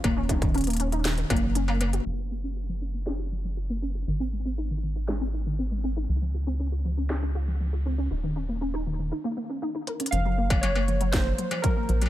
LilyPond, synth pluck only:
\new Staff \with { instrumentName = "Synth pluck" } { \time 4/4 \key ges \lydian \tempo 4 = 119 bes16 des'16 ees'16 ees16 des'16 bes16 des'16 ees'16 ees16 ees16 bes16 ges16 des'16 bes16 bes16 ges'16 | f16 f'16 bes16 des'16 f'16 f16 des'16 bes16 des'16 f'16 f16 f16 f'16 bes16 des'16 f'16 | ees16 c'16 aes16 c'16 ees'16 ees16 ees16 ees'16 aes16 c'16 ees'16 ees16 c'16 aes16 c'16 ees'16 | f16 f16 f'16 c'16 des'16 f'16 f16 des'16 c'16 des'16 f'16 f16 f16 f'16 c'16 des'16 |
ees'16 ees16 des'16 bes16 des'16 ees'16 ees16 ees16 ees'16 bes16 bes16 des'16 ees'16 ees'16 bes'16 des'16 | f16 ges16 bes16 f16 ges16 bes16 f16 ges16 bes16 f16 ges16 f16 ges16 bes16 f16 ges16 | }